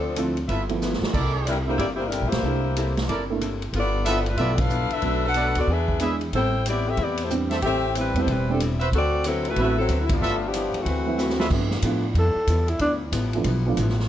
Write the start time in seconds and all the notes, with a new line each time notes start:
Already playing: D2 F3 C4 D4 A4
0.16 D3 F3 A3 C4 E4 F4, hi-hat pedal, ride
0.37 ride
0.48 G1 G2 F3 B3 E4 F4 A4 B4 E5, kick, ride
0.69 F3 A3 B3 E4, ride
0.82 G2 F3 B3 E4, snare, hi-hat pedal
0.93 snare
1.01 muted upright bass stroke, snare
1.12 C2 C3 E4 A4 A#4 D5, kick, crash
1.17 A#3 E4 A4
1.46 C3 G3 A#3 D4 E4 A4 A#4, hi-hat pedal, ride
1.67 A3 A#3 D4 E4 G4 C5
1.78 G1 C3 A#3 E4 G4 D5, kick, ride
1.82 A4
1.95 A#3 E4 G4 C5
2.08 C3 G3 D4 E4 A#4
2.12 A#3 E4 A4, hi-hat pedal, ride
2.21 A#1
2.27 A#3 E4 G4 C5
2.32 B1, snare, ride
2.43 C2 C3 A3 A#3 D4 E4 A4
2.76 C3 A#3 E4 A4, hi-hat pedal, ride
2.97 snare, ride
3.08 G1 C3 A#3 E4 A4 A#4 D5, kick, ride
3.30 A3 A#3 D4 E4
3.41 C3 A#3 E4 A4, hi-hat pedal, ride
3.62 ride
3.73 G1 G2 F3 B3 E4 F4 A4 D5, kick, ride
4.04 G2 F3 B3 D4 E4 F4 A4 B4 E5, hi-hat pedal, ride
4.26 A3 D4 F4 B4, ride
4.36 B1 G2 F3 A3 B3 E4 F4 A4 B4 D5 E5, kick, ride
4.57 D4 A4 B4 F5, kick, ride
4.70 G2 F3 B3 E4, hi-hat pedal
4.90 D4 A4 B4 E5, muted upright bass stroke, ride
5.02 B1 B2 F#3 A3 B3 D4 F#4, kick, ride
5.25 D4 A4 B4 F#5
5.34 B2 F#3 A3 D4 F#4 A4 B4 D5, hi-hat pedal, ride
5.55 D2 B3 F#4 A4, ride
5.59 D5
5.67 E2 E3 B3 D4 G#4 B4 E5, kick
5.88 kick
5.99 E3 G#3 B3 D4 E4 G#4 B4 E5, hi-hat pedal, ride
6.21 ride
6.33 A1 A2 G3 B3 C4 E4 A4 C5 G5, kick, ride
6.37 E4
6.66 A2 G3 B3 C4 E4 G4 D5, hi-hat pedal, ride
6.88 C4 G4 A4 E5
6.97 E2 A2 G3 B3 C4 E4 G4 D5, kick, ride
7.17 A3, ride
7.22 E4 G4 C5
7.30 A2 G3 B3 C4 D4 E4, hi-hat pedal
7.50 G4 A4 C5 E5, snare, ride
7.62 A1 A2 G3 C4 E4 G4 A4 E5, kick, ride
7.95 A2 G3 C4 E4 B4, hi-hat pedal, ride
8.14 E2 G3 A3 B3 C4 E4 G4, ride
8.18 C5
8.27 E1 A2 G3 C4 E4 B4, kick, ride
8.49 G3 B3 C4 D4 E4 A4
8.60 A2 G3 C4 E4, hi-hat pedal, ride
8.79 F#4 B4 C5 E5, ride
8.92 D2 D3 C4 F#4 A4 B4 D5, kick, ride
9.24 D3 F#3 C4 E4 F#4 A4 B4, hi-hat pedal, ride
9.45 A3 E4 B4, ride
9.49 F#4
9.56 A1 D3 F#3 B3 C4 F#4 B4 C5 E5, kick, ride
9.60 A3 E4 B4
9.77 F#3 C4 E4 A4
9.89 D2 D3 C4 F#4 B4, hi-hat pedal, ride
10.01 E4
10.09 B3 F4, kick, ride
10.13 A3 D4
10.20 G1 G2 F3 B3 E4 F4 A4 B4 E5
10.45 F3 B3 D4 G4
10.53 G2 F3 B3 E4, hi-hat pedal, ride
10.74 muted upright bass stroke, ride
10.78 E3 A3 C4 F#4
10.85 D2 D3 C4 F#4 B4, kick, ride
11.06 F#3 C4 E4 B4
11.18 D3 C4 F#4 B4, snare, hi-hat pedal
11.29 snare
11.39 G3 F4 A4 B4 E5, snare
11.50 G2 F3 A3 B3 D4 E4, kick, crash
11.71 snare
11.82 G2 A2 F3 A3 B3 D4 E4 F4, kick, hi-hat pedal, ride
12.14 F2 G2 F3 B3 A4, kick, ride
12.19 E4
12.35 muted upright bass stroke
12.47 E2 G2 F3 B3 E4, kick, hi-hat pedal, ride
12.68 E4, ride
12.79 D2 G2 F3 B3 D4 E4, kick, ride
13.12 A1 G2 F3 B3 E4, kick, hi-hat pedal, ride
13.33 F3 A3 B3 D4 E4, ride
13.44 B1 G2 F3 B3, kick, ride
13.48 E4
13.66 F3 A3 B3 D4 F4
13.77 A1 G2 F3 B3, kick, hi-hat pedal, ride
13.81 E4
13.89 snare
13.99 snare